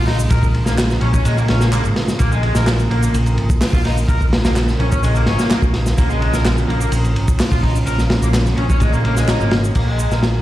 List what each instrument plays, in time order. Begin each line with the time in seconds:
Already playing: picked electric bass A#1, tonewheel organ C#3 F3 G#3
0.07 overdriven electric guitar D#4, snare, ride
0.19 shaker
0.30 picked electric bass A#1, overdriven electric guitar A#4, kick, ride, shaker
0.43 kick, shaker
0.54 ride
0.66 picked electric bass A#1, overdriven electric guitar A#3, snare, shaker
0.78 snare, clap, ride, shaker
0.90 snare, shaker
1.01 picked electric bass A#1, overdriven electric guitar C#4, ride
1.14 overdriven electric guitar C#4, kick, shaker
1.25 picked electric bass A#2, overdriven electric guitar G#3, ride, shaker
1.38 overdriven electric guitar A#3, ride, shaker
1.48 picked electric bass A#1, overdriven electric guitar C#4, snare, ride
1.61 overdriven electric guitar A#3, snare, shaker
1.73 overdriven electric guitar A#3, clap, ride, shaker
1.84 picked electric bass G#1, ride, shaker
1.96 snare, ride
2.08 snare, shaker
2.19 picked electric bass A#1, tonewheel organ A#3, overdriven electric guitar A#3, kick, ride, shaker
2.32 overdriven electric guitar G#3, shaker
2.43 overdriven electric guitar G#3, ride
2.55 picked electric bass A#1, overdriven electric guitar A#4, snare, shaker
2.67 snare, clap, ride, shaker
2.79 shaker
2.91 picked electric bass A#1, overdriven electric guitar A#3, ride
3.03 overdriven electric guitar A#3, shaker
3.14 picked electric bass A#1, ride, shaker
3.26 ride, shaker
3.38 picked electric bass G#1, ride
3.50 kick, shaker
3.61 snare, clap, open hi-hat, shaker
3.73 picked electric bass A#1, overdriven electric guitar F4, kick, shaker
3.85 overdriven electric guitar D#4, snare, ride
3.98 shaker
4.09 picked electric bass A#1, overdriven electric guitar A#4, kick, ride, shaker
4.21 kick, shaker
4.33 snare, ride
4.44 picked electric bass A#1, overdriven electric guitar A#3, snare, ride, shaker
4.56 snare, clap, ride, shaker
4.68 snare, shaker
4.80 picked electric bass A#1, overdriven electric guitar C#4, ride
4.92 overdriven electric guitar C#4, kick, shaker
5.03 picked electric bass A#1, overdriven electric guitar G#3, ride, shaker
5.15 overdriven electric guitar A#3, ride, shaker
5.26 picked electric bass G#1, overdriven electric guitar C#4, snare, ride
5.39 overdriven electric guitar A#3, snare, shaker
5.50 overdriven electric guitar A#3, snare, clap, ride, shaker
5.62 picked electric bass A#1, kick, shaker
5.74 snare, ride
5.86 snare, shaker
5.98 picked electric bass A#1, overdriven electric guitar A#3, tonewheel organ C#4, kick, ride, shaker
6.10 overdriven electric guitar G#3, shaker
6.21 overdriven electric guitar G#3, ride
6.33 picked electric bass A#1, overdriven electric guitar A#4, snare, shaker
6.45 snare, clap, ride, shaker
6.58 shaker
6.68 picked electric bass A#1, overdriven electric guitar A#3, ride
6.81 overdriven electric guitar A#3, shaker
6.92 picked electric bass A#1, ride, shaker
7.05 ride, shaker
7.16 picked electric bass G#1, ride
7.28 kick, shaker
7.40 snare, clap, open hi-hat, shaker
7.51 picked electric bass A#1, overdriven electric guitar F4, kick, shaker
7.63 overdriven electric guitar D#4, kick, ride
7.76 shaker
7.87 picked electric bass A#1, overdriven electric guitar A#4, ride, shaker
7.98 snare, shaker
8.10 snare, ride
8.22 picked electric bass A#1, overdriven electric guitar A#3, shaker
8.34 snare, clap, ride, shaker
8.46 snare, shaker
8.57 picked electric bass A#1, overdriven electric guitar C#4, ride
8.70 overdriven electric guitar C#4, kick, shaker
8.80 picked electric bass A#2, overdriven electric guitar G#3, kick, ride, shaker
8.93 overdriven electric guitar A#3, shaker
9.05 picked electric bass A#1, overdriven electric guitar A#3, ride
9.16 overdriven electric guitar G#3, snare, shaker
9.28 overdriven electric guitar D#4, snare, clap, ride, shaker
9.40 picked electric bass G#1, overdriven electric guitar A#3, shaker
9.51 snare, ride
9.64 shaker
9.75 picked electric bass A#1, overdriven electric guitar A#3, kick, crash, ride, shaker
9.88 overdriven electric guitar G#3
9.99 overdriven electric guitar G#3, ride, shaker
10.11 picked electric bass A#1, overdriven electric guitar A#4, snare, shaker
10.23 snare, ride, shaker